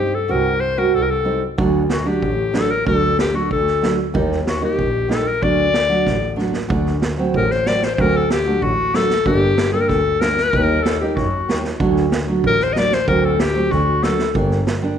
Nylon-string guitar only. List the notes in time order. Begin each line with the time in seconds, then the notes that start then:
Already playing: G3 C4 D#4
0.28 G3 C4 F#4
0.77 G3 C4 F#4
1.25 G3 C4 D#4
1.58 F#3 A3 D4
2.05 F#3 A3 D4
2.52 F#3 A3 D4
2.85 F#3 A3 D4
3.33 F#3 A3 D4
3.81 F#3 A3 D4
4.14 G3 A#3 D#4
4.61 G3 A#3 D#4
5.08 G3 A#3 D#4
5.42 F#3 A3 D4
5.89 F#3 A3 D4
6.36 F#3 A3 D4
6.69 F#3 A3 D4
7.18 F#3 A3 C4
7.66 F#3 A3 C4
7.98 F#3 A3 C4
8.46 F#3 A3 D4
8.94 F#3 A3 D4
9.26 G3 A#3 D4
9.73 G3 A#3 D4
10.21 G3 A#3 D4
10.53 G3 A#3 D#4
11.02 G3 A#3 D#4
11.49 G3 A#3 D#4
11.80 F#3 A3 D4
12.28 F#3 A3 D4
12.75 F#3 A3 D4
13.07 F#3 A3 C4
13.54 F#3 A3 C4
14.02 F#3 A3 D4
14.35 G3 A#3 D4
14.82 G3 A#3 D4